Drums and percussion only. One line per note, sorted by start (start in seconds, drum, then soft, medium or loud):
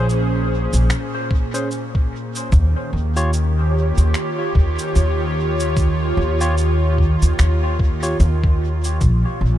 0.09 shaker soft
0.73 shaker medium
0.90 finger snap loud
0.90 shaker soft
1.31 kick loud
1.54 shaker medium
1.71 shaker soft
1.95 kick loud
2.35 shaker medium
2.52 kick loud
2.52 shaker soft
3.16 shaker medium
3.33 shaker soft
3.97 shaker medium
4.14 finger snap loud
4.14 shaker soft
4.55 kick loud
4.78 shaker medium
4.95 shaker soft
5.60 shaker medium
5.77 kick loud
5.77 shaker soft
6.41 shaker medium
6.58 shaker soft
6.98 kick medium
7.22 shaker medium
7.39 finger snap medium
7.39 shaker soft
7.79 kick loud
8.03 shaker soft
8.20 shaker soft
8.44 kick loud
8.84 shaker soft
9.01 kick loud
9.01 shaker soft